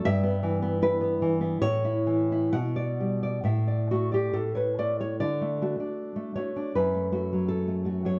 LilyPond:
\new Staff \with { instrumentName = "Nylon-string guitar" } { \time 2/4 \key d \major \tempo 4 = 77 << { e''4 b'4 | cis''4 fis''4 | e''8 fis'16 g'16 a'16 b'16 d''16 cis''16 | d''4. cis''8 |
b'4 a'8. cis''16 | } \\ { g,16 b16 e16 b16 e'16 b16 e16 b16 | a,16 e'16 e16 e'16 b,16 d''16 g16 d''16 | a,16 d''16 a16 d''16 a,16 cis''16 a16 cis''16 | d16 a16 <a fis'>16 d'8 a16 <a fis'>16 d'16 |
fis,16 a16 <a fis'>16 fis8 a16 <a fis'>16 fis16 | } >> }